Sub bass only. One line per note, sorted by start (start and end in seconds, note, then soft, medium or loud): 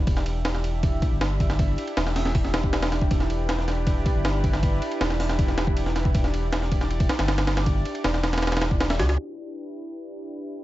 0.07 1.01 E1 loud
1.12 1.77 G1 medium
1.97 3.09 E1 loud
3.11 4.04 E1 loud
4.15 4.80 G1 medium
5.00 6.13 E1 loud
6.15 7.08 E1 loud
7.19 7.84 G1 medium
8.05 9.01 E1 loud
9.00 9.17 C#2 medium